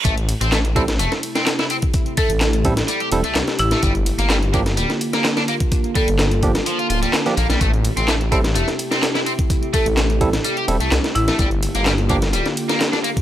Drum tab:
RD |--x---x---x---x-|--x---x---x---x-|--x---x---x---x-|--x---x---x---x-|
HH |xxxxxxxxxxxxxxxx|xxxxxxxxxxxxxxxx|xxxxxxxxxxxxxxxx|xxxxxxxxxxxxxxxx|
CP |----x-------x---|----x-------x---|----x-------x---|----x-------x---|
SD |----o--o-o-ooo--|----o--o----oo-o|----o--o-o-ooo--|----o--o----oo-o|
BD |o-----o--------o|o-o---o---------|o-----o--------o|o-o---o---------|

RD |--x---x---x---x-|--x---x---x---x-|--x---x---x---x-|
HH |xxxxxxxxxxxxxxxx|xxxxxxxxxxxxxxxx|xxxxxxxxxxxxxxxx|
CP |----x-------x---|----x-------x---|----x-------x---|
SD |----o--o-o-ooo--|----o--o----oo-o|----o--o-o-ooo--|
BD |o-----o--------o|o-o---o---------|o-----o--------o|